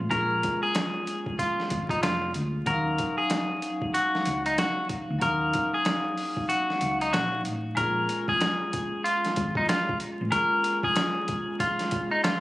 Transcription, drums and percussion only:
0.11 kick loud
0.11 closed hi-hat medium
0.43 kick medium
0.43 closed hi-hat medium
0.75 snare loud
0.75 closed hi-hat loud
1.07 closed hi-hat medium
1.26 kick medium
1.39 kick medium
1.39 closed hi-hat medium
1.60 snare soft
1.70 kick loud
1.70 closed hi-hat medium
1.89 kick loud
1.89 closed hi-hat soft
2.03 snare loud
2.03 closed hi-hat medium
2.34 closed hi-hat medium
2.66 kick loud
2.66 closed hi-hat medium
2.98 kick medium
2.98 closed hi-hat medium
3.30 snare loud
3.30 closed hi-hat loud
3.62 closed hi-hat medium
3.82 kick medium
3.94 closed hi-hat medium
4.15 snare soft
4.26 closed hi-hat medium
4.46 closed hi-hat soft
4.58 snare loud
4.58 closed hi-hat medium
4.89 kick medium
4.89 closed hi-hat medium
5.21 kick loud
5.21 closed hi-hat medium
5.53 kick medium
5.53 closed hi-hat medium
5.85 snare loud
5.85 closed hi-hat loud
6.18 open hi-hat medium
6.37 kick loud
6.50 closed hi-hat medium
6.70 snare soft
6.81 closed hi-hat medium
7.01 closed hi-hat medium
7.13 snare loud
7.13 closed hi-hat medium
7.45 closed hi-hat medium
7.77 kick loud
7.77 closed hi-hat medium
8.09 closed hi-hat medium
8.28 kick loud
8.41 snare loud
8.41 closed hi-hat loud
8.73 kick loud
8.73 closed hi-hat medium
9.05 closed hi-hat medium
9.25 snare soft
9.25 closed hi-hat soft
9.36 kick loud
9.36 closed hi-hat medium
9.55 kick loud
9.69 snare loud
9.69 closed hi-hat medium
9.89 kick loud
10.00 closed hi-hat medium
10.32 kick loud
10.32 closed hi-hat loud
10.64 closed hi-hat medium
10.83 kick loud
10.96 snare loud
10.96 closed hi-hat loud
11.28 kick loud
11.28 closed hi-hat medium
11.60 kick medium
11.60 closed hi-hat medium
11.79 snare soft
11.79 closed hi-hat soft
11.91 kick loud
11.91 closed hi-hat medium
12.24 snare loud
12.24 closed hi-hat medium

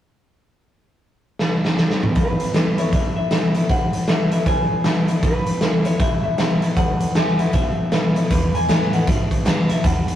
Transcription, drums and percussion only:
1.39 snare medium
1.65 snare medium
1.78 snare medium
1.90 snare medium
2.03 mid tom medium
2.16 kick loud
2.16 closed hi-hat medium
2.40 closed hi-hat medium
2.54 snare loud
2.54 closed hi-hat medium
2.78 closed hi-hat medium
2.93 kick loud
2.93 closed hi-hat medium
3.31 snare loud
3.31 closed hi-hat medium
3.55 closed hi-hat medium
3.69 kick loud
3.69 closed hi-hat medium
3.93 closed hi-hat medium
4.08 snare loud
4.08 closed hi-hat medium
4.32 closed hi-hat medium
4.46 kick loud
4.46 closed hi-hat medium
4.84 snare loud
4.84 closed hi-hat medium
5.08 closed hi-hat medium
5.23 kick loud
5.23 closed hi-hat medium
5.46 closed hi-hat medium
5.61 snare loud
5.61 closed hi-hat medium
5.85 closed hi-hat medium
6.00 kick loud
6.00 closed hi-hat medium
6.38 snare loud
6.38 closed hi-hat medium
6.62 closed hi-hat medium
6.77 kick loud
6.77 closed hi-hat medium
7.00 closed hi-hat medium
7.15 snare loud
7.15 closed hi-hat medium
7.39 closed hi-hat medium
7.54 kick loud
7.54 closed hi-hat medium
7.92 snare loud
7.92 closed hi-hat medium
8.16 closed hi-hat medium
8.31 kick loud
8.31 closed hi-hat medium
8.55 closed hi-hat medium
8.69 snare loud
8.69 closed hi-hat medium
8.93 closed hi-hat medium
9.07 kick loud
9.07 closed hi-hat medium
9.31 kick medium
9.31 closed hi-hat medium
9.46 snare loud
9.46 closed hi-hat medium
9.69 closed hi-hat medium
9.84 kick loud
9.84 closed hi-hat medium
10.08 closed hi-hat medium

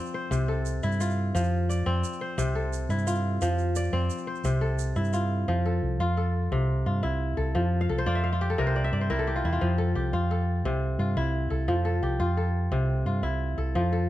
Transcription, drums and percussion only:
0.06 shaker soft
0.32 shaker medium
0.66 shaker medium
0.83 shaker soft
0.92 shaker soft
1.00 shaker medium
1.10 shaker soft
1.36 shaker medium
1.70 shaker medium
2.04 shaker medium
2.13 shaker soft
2.39 shaker medium
2.73 shaker medium
2.90 shaker soft
2.98 shaker soft
3.07 shaker medium
3.41 shaker medium
3.58 shaker soft
3.76 shaker medium
3.84 shaker soft
4.10 shaker medium
4.18 shaker soft
4.35 shaker soft
4.44 shaker medium
4.79 shaker medium
4.96 shaker soft
5.04 shaker soft
5.13 shaker medium

